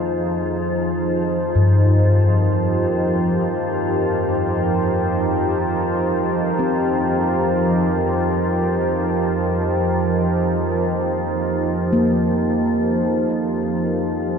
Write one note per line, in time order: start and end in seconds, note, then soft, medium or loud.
0.00 14.38 F2 medium
0.00 14.38 F3 medium
0.00 1.26 A#3 medium
0.00 14.38 D#4 medium
0.00 2.25 F4 medium
0.00 0.98 G#4 medium
0.00 14.38 C5 medium
0.98 14.38 F3 medium
1.33 14.38 G4 medium
1.49 14.38 A#4 medium
1.55 7.00 G2 medium
6.59 12.04 C4 medium
11.93 14.38 A#3 medium